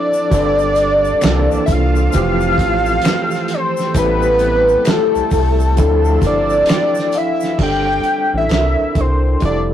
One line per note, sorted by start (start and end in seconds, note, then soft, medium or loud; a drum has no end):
0.00 0.18 F3 medium
0.00 0.30 F3 medium
0.00 0.19 C4 medium
0.00 0.19 D4 medium
0.00 0.19 E4 medium
0.00 0.20 A4 loud
0.00 1.65 D5 loud
0.00 0.30 E5 medium
0.00 1.18 A5 medium
0.13 shaker medium
0.30 1.13 G1 loud
0.30 1.15 G3 medium
0.30 0.76 B3 medium
0.30 1.15 C4 medium
0.30 1.16 D4 medium
0.30 1.16 F4 medium
0.30 0.76 G4 medium
0.30 1.22 A4 medium
0.30 1.17 A4 medium
0.30 0.76 B4 medium
0.30 1.22 F5 medium
0.30 kick loud
0.30 closed hi-hat medium
0.30 shaker medium
0.59 shaker soft
0.75 closed hi-hat medium
0.75 shaker soft
1.05 shaker soft
1.21 1.30 D3 medium
1.21 1.67 G3 medium
1.21 2.13 A#3 medium
1.21 2.12 A#3 medium
1.21 2.12 C4 medium
1.21 1.67 E4 medium
1.21 1.67 A#4 medium
1.21 2.12 A5 medium
1.21 2.12 D6 medium
1.21 2.12 E6 medium
1.21 finger snap medium
1.21 closed hi-hat medium
1.21 shaker medium
1.24 1.48 C2 loud
1.24 2.14 E3 medium
1.24 2.14 D4 medium
1.24 2.14 A4 loud
1.24 finger snap loud
1.24 snare loud
1.51 1.59 C2 medium
1.51 shaker soft
1.66 2.09 C2 medium
1.66 1.73 E5 medium
1.66 kick medium
1.66 closed hi-hat medium
1.66 shaker medium
1.72 3.55 F5 loud
1.96 shaker medium
2.11 3.47 E3 medium
2.11 3.83 E3 medium
2.11 3.81 F3 medium
2.11 3.82 A3 medium
2.11 3.47 C4 medium
2.11 3.82 C4 medium
2.11 5.73 A4 medium
2.11 3.47 A4 medium
2.11 5.73 G5 medium
2.11 3.93 E6 medium
2.11 kick medium
2.11 closed hi-hat medium
2.11 shaker medium
2.16 2.55 F1 loud
2.16 3.83 G4 medium
2.40 shaker soft
2.58 2.99 A1 medium
2.58 kick medium
2.58 closed hi-hat medium
2.86 shaker medium
3.02 finger snap medium
3.02 closed hi-hat medium
3.02 shaker medium
3.06 snare loud
3.31 snare soft
3.31 shaker medium
3.48 closed hi-hat medium
3.54 3.97 C5 medium
3.77 snare soft
3.77 shaker medium
3.94 4.76 A1 loud
3.94 5.29 E3 medium
3.94 4.79 G3 medium
3.94 4.79 A3 medium
3.94 5.29 C4 medium
3.94 4.80 C4 medium
3.94 4.80 E4 medium
3.94 5.29 G4 medium
3.94 4.81 A4 medium
3.94 5.75 A5 medium
3.94 kick loud
3.94 closed hi-hat medium
3.94 shaker medium
3.98 4.91 B4 loud
4.22 shaker medium
4.39 closed hi-hat medium
4.39 shaker soft
4.69 shaker soft
4.85 5.76 G3 medium
4.85 5.77 A3 medium
4.85 5.76 C4 medium
4.85 finger snap medium
4.85 closed hi-hat medium
4.85 shaker medium
4.87 5.77 E4 medium
4.87 5.78 A4 medium
4.87 6.24 A4 medium
4.87 finger snap medium
4.87 snare loud
5.15 5.22 C2 soft
5.15 shaker soft
5.31 5.80 C2 medium
5.31 kick medium
5.31 open hi-hat soft
5.31 shaker medium
5.60 shaker medium
5.76 6.18 D2 loud
5.76 7.11 C3 medium
5.76 7.45 F3 medium
5.76 7.11 A3 medium
5.76 7.46 C4 medium
5.76 7.46 D4 medium
5.76 7.47 E4 medium
5.76 7.11 F4 medium
5.76 7.47 A4 medium
5.76 7.57 C5 medium
5.76 7.57 D5 medium
5.76 7.57 E6 medium
5.76 kick medium
5.76 closed hi-hat medium
5.76 shaker medium
6.05 shaker soft
6.22 6.63 G1 medium
6.22 6.65 A5 medium
6.22 kick medium
6.22 closed hi-hat medium
6.22 shaker soft
6.27 7.19 D5 loud
6.49 shaker soft
6.66 7.11 G5 medium
6.66 finger snap medium
6.66 closed hi-hat medium
6.66 shaker medium
6.70 snare loud
6.95 snare soft
6.95 shaker medium
7.12 7.57 F5 medium
7.12 closed hi-hat medium
7.12 shaker soft
7.17 7.61 E5 medium
7.40 snare soft
7.40 shaker medium
7.58 7.99 G1 loud
7.58 8.49 G3 medium
7.58 8.49 C4 medium
7.58 8.50 D4 medium
7.58 8.50 F4 medium
7.58 8.48 A4 medium
7.58 kick medium
7.58 crash medium
7.63 8.30 G5 loud
8.04 closed hi-hat soft
8.34 8.48 A1 medium
8.34 9.02 E5 loud
8.49 8.75 C2 medium
8.49 9.34 C4 medium
8.49 9.35 D4 medium
8.49 9.36 E4 medium
8.49 9.34 A4 medium
8.49 finger snap medium
8.49 snare medium
8.49 closed hi-hat medium
8.53 9.36 A#4 medium
8.79 8.85 C2 soft
8.95 9.36 C2 medium
8.95 kick medium
8.95 closed hi-hat medium
9.00 9.43 C5 medium
9.40 9.74 F1 medium
9.40 9.74 G3 medium
9.40 9.74 C4 medium
9.40 9.74 E4 medium
9.40 9.74 F4 medium
9.40 kick medium
9.40 closed hi-hat medium
9.44 9.74 A4 medium
9.44 9.59 D5 medium